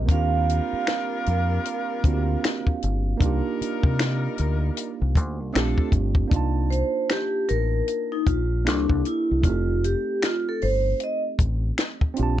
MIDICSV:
0, 0, Header, 1, 7, 480
1, 0, Start_track
1, 0, Tempo, 779221
1, 52, Time_signature, 4, 2, 24, 8
1, 7638, End_track
2, 0, Start_track
2, 0, Title_t, "Vibraphone"
2, 0, Program_c, 0, 11
2, 70, Note_on_c, 0, 77, 98
2, 3396, Note_off_c, 0, 77, 0
2, 4130, Note_on_c, 0, 72, 81
2, 4354, Note_off_c, 0, 72, 0
2, 4376, Note_on_c, 0, 67, 76
2, 4598, Note_off_c, 0, 67, 0
2, 4612, Note_on_c, 0, 70, 87
2, 5002, Note_on_c, 0, 63, 72
2, 5011, Note_off_c, 0, 70, 0
2, 5092, Note_on_c, 0, 65, 75
2, 5097, Note_off_c, 0, 63, 0
2, 5337, Note_on_c, 0, 62, 75
2, 5339, Note_off_c, 0, 65, 0
2, 5558, Note_off_c, 0, 62, 0
2, 5584, Note_on_c, 0, 64, 81
2, 5802, Note_off_c, 0, 64, 0
2, 5822, Note_on_c, 0, 65, 82
2, 6041, Note_off_c, 0, 65, 0
2, 6065, Note_on_c, 0, 67, 83
2, 6282, Note_off_c, 0, 67, 0
2, 6314, Note_on_c, 0, 65, 84
2, 6454, Note_off_c, 0, 65, 0
2, 6460, Note_on_c, 0, 69, 79
2, 6545, Note_off_c, 0, 69, 0
2, 6545, Note_on_c, 0, 72, 94
2, 6762, Note_off_c, 0, 72, 0
2, 6798, Note_on_c, 0, 75, 86
2, 6900, Note_off_c, 0, 75, 0
2, 7638, End_track
3, 0, Start_track
3, 0, Title_t, "Saxophone section"
3, 0, Program_c, 1, 65
3, 51, Note_on_c, 1, 70, 78
3, 52, Note_on_c, 1, 55, 67
3, 53, Note_on_c, 1, 65, 70
3, 1707, Note_off_c, 1, 70, 0
3, 1708, Note_off_c, 1, 55, 0
3, 1708, Note_off_c, 1, 65, 0
3, 1971, Note_on_c, 1, 70, 80
3, 1972, Note_on_c, 1, 63, 69
3, 1973, Note_on_c, 1, 55, 72
3, 3148, Note_off_c, 1, 55, 0
3, 3148, Note_off_c, 1, 63, 0
3, 3148, Note_off_c, 1, 70, 0
3, 3410, Note_on_c, 1, 62, 64
3, 3412, Note_on_c, 1, 53, 61
3, 3412, Note_on_c, 1, 69, 68
3, 3647, Note_off_c, 1, 62, 0
3, 3647, Note_off_c, 1, 69, 0
3, 3648, Note_off_c, 1, 53, 0
3, 7638, End_track
4, 0, Start_track
4, 0, Title_t, "Tine electric piano"
4, 0, Program_c, 2, 4
4, 0, Control_c, 2, 64, 127
4, 0, Note_on_c, 2, 50, 55
4, 0, Note_on_c, 2, 56, 59
4, 0, Note_on_c, 2, 60, 56
4, 0, Note_on_c, 2, 65, 54
4, 0, Note_on_c, 2, 67, 70
4, 0, Note_on_c, 2, 75, 64
4, 36, Note_on_c, 2, 58, 64
4, 48, Note_off_c, 2, 60, 0
4, 48, Note_on_c, 2, 60, 57
4, 60, Control_c, 2, 64, 0
4, 62, Note_on_c, 2, 62, 58
4, 64, Note_off_c, 2, 65, 0
4, 65, Note_off_c, 2, 75, 0
4, 66, Note_off_c, 2, 56, 0
4, 67, Note_off_c, 2, 67, 0
4, 75, Note_on_c, 2, 65, 64
4, 81, Note_off_c, 2, 50, 0
4, 88, Note_on_c, 2, 67, 74
4, 154, Control_c, 2, 64, 127
4, 1220, Note_off_c, 2, 58, 0
4, 1226, Note_off_c, 2, 60, 0
4, 1233, Note_off_c, 2, 62, 0
4, 1240, Note_off_c, 2, 65, 0
4, 1246, Note_off_c, 2, 67, 0
4, 1250, Note_on_c, 2, 58, 57
4, 1257, Note_on_c, 2, 60, 55
4, 1263, Note_on_c, 2, 62, 54
4, 1271, Note_on_c, 2, 65, 55
4, 1276, Note_on_c, 2, 66, 53
4, 1313, Note_off_c, 2, 66, 0
4, 1318, Note_on_c, 2, 67, 64
4, 1947, Note_off_c, 2, 58, 0
4, 1955, Note_on_c, 2, 58, 78
4, 1961, Note_off_c, 2, 62, 0
4, 1968, Note_on_c, 2, 62, 70
4, 1974, Note_off_c, 2, 60, 0
4, 1981, Control_c, 2, 64, 0
4, 1982, Note_off_c, 2, 65, 0
4, 1983, Note_on_c, 2, 63, 71
4, 1996, Note_on_c, 2, 65, 71
4, 2000, Note_off_c, 2, 67, 0
4, 2008, Note_on_c, 2, 67, 84
4, 2068, Control_c, 2, 64, 127
4, 3379, Note_off_c, 2, 58, 0
4, 3386, Note_off_c, 2, 62, 0
4, 3393, Note_off_c, 2, 63, 0
4, 3400, Note_off_c, 2, 65, 0
4, 3405, Note_off_c, 2, 67, 0
4, 3405, Note_on_c, 2, 57, 74
4, 3410, Note_on_c, 2, 60, 65
4, 3419, Note_on_c, 2, 62, 64
4, 3422, Control_c, 2, 64, 0
4, 3425, Note_on_c, 2, 65, 65
4, 3431, Note_on_c, 2, 67, 84
4, 3521, Control_c, 2, 64, 127
4, 3866, Note_on_c, 2, 58, 67
4, 3872, Note_off_c, 2, 62, 0
4, 3879, Note_on_c, 2, 62, 65
4, 3889, Note_off_c, 2, 57, 0
4, 3891, Note_off_c, 2, 60, 0
4, 3893, Note_on_c, 2, 63, 68
4, 3899, Note_off_c, 2, 65, 0
4, 3900, Control_c, 2, 64, 0
4, 3902, Note_off_c, 2, 67, 0
4, 3907, Note_on_c, 2, 65, 65
4, 3920, Note_on_c, 2, 81, 77
4, 3999, Control_c, 2, 64, 127
4, 5295, Note_off_c, 2, 58, 0
4, 5301, Note_off_c, 2, 62, 0
4, 5308, Note_off_c, 2, 63, 0
4, 5315, Note_off_c, 2, 65, 0
4, 5321, Note_off_c, 2, 81, 0
4, 5326, Note_on_c, 2, 58, 54
4, 5330, Note_on_c, 2, 62, 53
4, 5338, Note_on_c, 2, 64, 53
4, 5341, Control_c, 2, 64, 0
4, 5345, Note_on_c, 2, 67, 51
4, 5350, Note_on_c, 2, 69, 63
4, 5463, Control_c, 2, 64, 127
4, 5797, Note_on_c, 2, 57, 61
4, 5809, Note_off_c, 2, 58, 0
4, 5809, Note_on_c, 2, 60, 54
4, 5811, Note_off_c, 2, 62, 0
4, 5815, Note_off_c, 2, 64, 0
4, 5819, Note_off_c, 2, 67, 0
4, 5820, Control_c, 2, 64, 0
4, 5821, Note_off_c, 2, 69, 0
4, 5822, Note_on_c, 2, 63, 58
4, 5836, Note_on_c, 2, 67, 56
4, 5851, Note_on_c, 2, 69, 69
4, 5915, Control_c, 2, 64, 127
4, 7460, Note_off_c, 2, 57, 0
4, 7466, Note_off_c, 2, 60, 0
4, 7473, Note_off_c, 2, 63, 0
4, 7478, Note_on_c, 2, 60, 72
4, 7480, Note_off_c, 2, 67, 0
4, 7487, Note_off_c, 2, 69, 0
4, 7491, Note_on_c, 2, 62, 65
4, 7500, Control_c, 2, 64, 0
4, 7501, Note_on_c, 2, 65, 68
4, 7517, Note_on_c, 2, 67, 67
4, 7532, Note_on_c, 2, 81, 80
4, 7602, Control_c, 2, 64, 127
4, 7638, Note_off_c, 2, 60, 0
4, 7638, Note_off_c, 2, 62, 0
4, 7638, Note_off_c, 2, 65, 0
4, 7638, Note_off_c, 2, 67, 0
4, 7638, Note_off_c, 2, 81, 0
4, 7638, End_track
5, 0, Start_track
5, 0, Title_t, "Fingered electric bass"
5, 0, Program_c, 3, 33
5, 0, Note_on_c, 3, 34, 92
5, 63, Note_off_c, 3, 34, 0
5, 63, Note_on_c, 3, 39, 105
5, 365, Note_off_c, 3, 39, 0
5, 785, Note_on_c, 3, 41, 88
5, 970, Note_off_c, 3, 41, 0
5, 1263, Note_on_c, 3, 38, 79
5, 1449, Note_off_c, 3, 38, 0
5, 1746, Note_on_c, 3, 31, 79
5, 1931, Note_off_c, 3, 31, 0
5, 1983, Note_on_c, 3, 36, 98
5, 2095, Note_off_c, 3, 36, 0
5, 2369, Note_on_c, 3, 48, 84
5, 2629, Note_off_c, 3, 48, 0
5, 2706, Note_on_c, 3, 38, 86
5, 2891, Note_off_c, 3, 38, 0
5, 3089, Note_on_c, 3, 36, 82
5, 3184, Note_off_c, 3, 36, 0
5, 3184, Note_on_c, 3, 38, 83
5, 3326, Note_off_c, 3, 38, 0
5, 3326, Note_on_c, 3, 36, 80
5, 3397, Note_off_c, 3, 36, 0
5, 3424, Note_on_c, 3, 34, 104
5, 3535, Note_off_c, 3, 34, 0
5, 3653, Note_on_c, 3, 31, 86
5, 3843, Note_off_c, 3, 31, 0
5, 3896, Note_on_c, 3, 36, 86
5, 4201, Note_off_c, 3, 36, 0
5, 4623, Note_on_c, 3, 33, 70
5, 4809, Note_off_c, 3, 33, 0
5, 5099, Note_on_c, 3, 34, 78
5, 5347, Note_off_c, 3, 34, 0
5, 5347, Note_on_c, 3, 36, 90
5, 5457, Note_off_c, 3, 36, 0
5, 5486, Note_on_c, 3, 36, 79
5, 5557, Note_off_c, 3, 36, 0
5, 5736, Note_on_c, 3, 36, 78
5, 5803, Note_off_c, 3, 36, 0
5, 5819, Note_on_c, 3, 29, 93
5, 6122, Note_off_c, 3, 29, 0
5, 6547, Note_on_c, 3, 31, 77
5, 6731, Note_off_c, 3, 31, 0
5, 7023, Note_on_c, 3, 33, 80
5, 7209, Note_off_c, 3, 33, 0
5, 7511, Note_on_c, 3, 34, 86
5, 7638, Note_off_c, 3, 34, 0
5, 7638, End_track
6, 0, Start_track
6, 0, Title_t, "Muted fingered electric bass strokes"
6, 449, Note_on_c, 9, 29, 43
6, 510, Note_off_c, 9, 29, 0
6, 2225, Note_on_c, 9, 29, 48
6, 2286, Note_off_c, 9, 29, 0
6, 7638, End_track
7, 0, Start_track
7, 0, Title_t, "Drums"
7, 53, Note_on_c, 9, 36, 106
7, 57, Note_on_c, 9, 42, 76
7, 114, Note_off_c, 9, 36, 0
7, 119, Note_off_c, 9, 42, 0
7, 304, Note_on_c, 9, 42, 62
7, 366, Note_off_c, 9, 42, 0
7, 537, Note_on_c, 9, 26, 89
7, 537, Note_on_c, 9, 42, 82
7, 542, Note_on_c, 9, 38, 107
7, 598, Note_off_c, 9, 42, 0
7, 599, Note_off_c, 9, 26, 0
7, 604, Note_off_c, 9, 38, 0
7, 778, Note_on_c, 9, 42, 63
7, 839, Note_off_c, 9, 42, 0
7, 1018, Note_on_c, 9, 42, 86
7, 1080, Note_off_c, 9, 42, 0
7, 1256, Note_on_c, 9, 36, 92
7, 1261, Note_on_c, 9, 42, 60
7, 1318, Note_off_c, 9, 36, 0
7, 1323, Note_off_c, 9, 42, 0
7, 1504, Note_on_c, 9, 26, 84
7, 1506, Note_on_c, 9, 42, 89
7, 1509, Note_on_c, 9, 38, 109
7, 1566, Note_off_c, 9, 26, 0
7, 1567, Note_off_c, 9, 42, 0
7, 1571, Note_off_c, 9, 38, 0
7, 1643, Note_on_c, 9, 36, 76
7, 1704, Note_off_c, 9, 36, 0
7, 1740, Note_on_c, 9, 42, 63
7, 1801, Note_off_c, 9, 42, 0
7, 1975, Note_on_c, 9, 36, 106
7, 1981, Note_on_c, 9, 42, 77
7, 2036, Note_off_c, 9, 36, 0
7, 2043, Note_off_c, 9, 42, 0
7, 2229, Note_on_c, 9, 42, 65
7, 2290, Note_off_c, 9, 42, 0
7, 2362, Note_on_c, 9, 36, 90
7, 2424, Note_off_c, 9, 36, 0
7, 2460, Note_on_c, 9, 26, 85
7, 2460, Note_on_c, 9, 42, 79
7, 2466, Note_on_c, 9, 38, 111
7, 2522, Note_off_c, 9, 26, 0
7, 2522, Note_off_c, 9, 42, 0
7, 2527, Note_off_c, 9, 38, 0
7, 2697, Note_on_c, 9, 42, 58
7, 2758, Note_off_c, 9, 42, 0
7, 2937, Note_on_c, 9, 42, 86
7, 2999, Note_off_c, 9, 42, 0
7, 3175, Note_on_c, 9, 36, 90
7, 3181, Note_on_c, 9, 42, 66
7, 3237, Note_off_c, 9, 36, 0
7, 3243, Note_off_c, 9, 42, 0
7, 3422, Note_on_c, 9, 26, 86
7, 3423, Note_on_c, 9, 42, 92
7, 3427, Note_on_c, 9, 38, 105
7, 3483, Note_off_c, 9, 26, 0
7, 3485, Note_off_c, 9, 42, 0
7, 3488, Note_off_c, 9, 38, 0
7, 3558, Note_on_c, 9, 36, 78
7, 3620, Note_off_c, 9, 36, 0
7, 3647, Note_on_c, 9, 36, 86
7, 3649, Note_on_c, 9, 42, 60
7, 3709, Note_off_c, 9, 36, 0
7, 3711, Note_off_c, 9, 42, 0
7, 3787, Note_on_c, 9, 36, 85
7, 3849, Note_off_c, 9, 36, 0
7, 3890, Note_on_c, 9, 36, 101
7, 3894, Note_on_c, 9, 42, 70
7, 3951, Note_off_c, 9, 36, 0
7, 3956, Note_off_c, 9, 42, 0
7, 4140, Note_on_c, 9, 42, 57
7, 4201, Note_off_c, 9, 42, 0
7, 4371, Note_on_c, 9, 26, 81
7, 4371, Note_on_c, 9, 42, 77
7, 4376, Note_on_c, 9, 38, 99
7, 4433, Note_off_c, 9, 26, 0
7, 4433, Note_off_c, 9, 42, 0
7, 4438, Note_off_c, 9, 38, 0
7, 4612, Note_on_c, 9, 42, 53
7, 4673, Note_off_c, 9, 42, 0
7, 4852, Note_on_c, 9, 42, 77
7, 4913, Note_off_c, 9, 42, 0
7, 5092, Note_on_c, 9, 36, 86
7, 5096, Note_on_c, 9, 42, 58
7, 5153, Note_off_c, 9, 36, 0
7, 5157, Note_off_c, 9, 42, 0
7, 5339, Note_on_c, 9, 26, 81
7, 5341, Note_on_c, 9, 42, 87
7, 5344, Note_on_c, 9, 38, 103
7, 5401, Note_off_c, 9, 26, 0
7, 5403, Note_off_c, 9, 42, 0
7, 5406, Note_off_c, 9, 38, 0
7, 5479, Note_on_c, 9, 36, 73
7, 5541, Note_off_c, 9, 36, 0
7, 5575, Note_on_c, 9, 42, 59
7, 5637, Note_off_c, 9, 42, 0
7, 5812, Note_on_c, 9, 36, 103
7, 5815, Note_on_c, 9, 42, 74
7, 5873, Note_off_c, 9, 36, 0
7, 5876, Note_off_c, 9, 42, 0
7, 6062, Note_on_c, 9, 42, 59
7, 6123, Note_off_c, 9, 42, 0
7, 6299, Note_on_c, 9, 26, 85
7, 6299, Note_on_c, 9, 42, 81
7, 6304, Note_on_c, 9, 38, 95
7, 6360, Note_off_c, 9, 26, 0
7, 6360, Note_off_c, 9, 42, 0
7, 6365, Note_off_c, 9, 38, 0
7, 6538, Note_on_c, 9, 46, 42
7, 6600, Note_off_c, 9, 46, 0
7, 6775, Note_on_c, 9, 42, 79
7, 6836, Note_off_c, 9, 42, 0
7, 7015, Note_on_c, 9, 36, 89
7, 7020, Note_on_c, 9, 42, 61
7, 7077, Note_off_c, 9, 36, 0
7, 7081, Note_off_c, 9, 42, 0
7, 7256, Note_on_c, 9, 26, 81
7, 7257, Note_on_c, 9, 42, 85
7, 7261, Note_on_c, 9, 38, 102
7, 7317, Note_off_c, 9, 26, 0
7, 7319, Note_off_c, 9, 42, 0
7, 7322, Note_off_c, 9, 38, 0
7, 7400, Note_on_c, 9, 36, 72
7, 7462, Note_off_c, 9, 36, 0
7, 7493, Note_on_c, 9, 42, 59
7, 7555, Note_off_c, 9, 42, 0
7, 7638, End_track
0, 0, End_of_file